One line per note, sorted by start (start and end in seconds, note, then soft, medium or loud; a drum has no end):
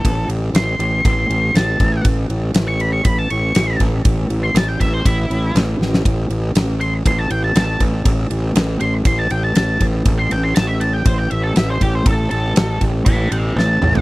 0.00 0.27 A4 medium
0.05 0.28 A1 loud
0.05 kick loud
0.05 ride loud
0.28 0.52 A1 medium
0.28 ride medium
0.53 0.77 A1 medium
0.53 1.04 C6 loud
0.53 snare loud
0.53 ride medium
0.79 1.02 A1 medium
0.79 ride medium
1.05 1.28 A1 medium
1.05 1.54 C6 loud
1.05 kick loud
1.05 ride medium
1.29 1.53 A1 medium
1.29 ride medium
1.54 1.78 A1 medium
1.54 2.04 A5 loud
1.54 snare medium
1.54 ride medium
1.80 2.03 A1 loud
1.80 kick medium
1.80 ride medium
2.05 2.28 A1 medium
2.05 kick loud
2.05 ride loud
2.29 2.53 A1 medium
2.29 ride medium
2.54 3.01 A1 medium
2.54 snare loud
2.54 ride loud
2.68 2.81 C#6 medium
2.80 2.92 B5 medium
2.80 ride medium
2.93 3.05 C#6 medium
3.05 3.28 A1 loud
3.05 3.17 B5 medium
3.05 kick loud
3.05 ride loud
3.19 3.30 A5 medium
3.30 3.53 A1 medium
3.30 3.79 C#6 loud
3.30 ride medium
3.55 3.78 A1 medium
3.55 snare loud
3.55 ride medium
3.80 4.03 A1 medium
3.80 kick medium
3.80 ride medium
4.05 4.28 A1 medium
4.05 kick loud
4.05 ride loud
4.30 4.53 A1 medium
4.30 ride medium
4.43 4.55 C6 loud
4.54 4.78 A1 medium
4.54 4.68 A5 medium
4.54 snare loud
4.54 ride loud
4.68 4.80 G5 medium
4.80 5.03 A1 medium
4.80 4.92 E5 medium
4.80 kick medium
4.80 ride medium
4.94 5.05 C5 medium
5.05 5.28 A1 medium
5.05 5.54 E4 loud
5.05 kick loud
5.05 ride loud
5.30 5.53 A1 medium
5.30 ride medium
5.55 5.78 A1 medium
5.55 snare medium
5.55 ride medium
5.79 6.03 A1 medium
5.79 snare medium
5.94 snare medium
6.05 6.28 A1 medium
6.05 kick loud
6.05 ride medium
6.30 6.53 A1 medium
6.30 ride medium
6.55 7.02 A1 medium
6.55 snare loud
6.55 ride medium
6.81 6.92 C6 loud
6.81 ride medium
7.06 7.29 A1 medium
7.06 7.18 C6 medium
7.06 kick loud
7.06 ride loud
7.19 7.30 A5 medium
7.30 7.53 A1 medium
7.30 7.43 G5 medium
7.30 ride medium
7.44 7.55 A5 medium
7.55 7.78 A1 medium
7.55 7.80 A5 loud
7.55 snare loud
7.55 ride medium
7.80 8.03 A1 medium
7.80 kick medium
7.80 ride medium
8.05 8.28 A1 loud
8.05 kick loud
8.05 ride medium
8.30 8.53 A1 medium
8.30 ride medium
8.55 8.78 A1 medium
8.55 snare loud
8.55 ride medium
8.80 9.04 A1 medium
8.80 8.93 C6 loud
8.80 ride medium
9.05 9.29 A1 medium
9.05 9.19 C6 loud
9.05 kick loud
9.05 ride medium
9.19 9.30 A5 medium
9.30 9.54 A1 medium
9.30 9.43 G5 medium
9.30 ride medium
9.43 9.55 A5 medium
9.55 9.79 A1 medium
9.55 9.80 A5 loud
9.55 snare loud
9.55 ride medium
9.80 10.04 A1 loud
9.80 kick medium
9.80 ride medium
10.05 10.29 A1 loud
10.05 kick loud
10.05 ride medium
10.19 10.31 C6 loud
10.31 10.54 A1 medium
10.31 10.43 G5 medium
10.31 ride medium
10.43 10.55 C6 medium
10.55 11.03 A1 medium
10.55 10.67 A5 loud
10.55 snare loud
10.55 ride medium
10.67 10.80 E5 medium
10.80 10.93 A5 medium
10.80 ride medium
10.93 11.05 G5 loud
11.05 11.29 A1 loud
11.05 11.18 C5 medium
11.05 kick loud
11.05 ride loud
11.18 11.30 G5 medium
11.30 11.54 A1 medium
11.30 11.43 E5 medium
11.30 ride medium
11.43 11.55 A4 loud
11.56 11.79 A1 medium
11.56 11.69 E5 medium
11.56 snare loud
11.56 ride medium
11.70 11.81 C5 medium
11.81 12.04 A1 medium
11.81 11.94 G4 loud
11.81 kick medium
11.81 ride medium
11.95 12.06 C5 medium
12.06 12.29 A1 loud
12.06 12.30 A4 loud
12.06 kick loud
12.06 ride medium
12.31 12.55 A1 medium
12.31 12.80 A4 loud
12.31 ride medium
12.56 12.79 A1 medium
12.56 snare loud
12.56 ride loud
12.81 13.04 A1 medium
12.81 kick medium
12.81 ride medium
13.05 13.29 A1 medium
13.05 13.31 C#5 medium
13.05 13.30 A5 loud
13.05 kick loud
13.05 ride loud
13.31 13.54 A1 medium
13.31 13.55 E5 medium
13.31 13.56 G5 medium
13.31 ride medium
13.56 13.79 A1 loud
13.56 14.01 A5 loud
13.56 snare medium
13.81 14.01 A1 loud
13.81 mid tom medium
13.95 floor tom medium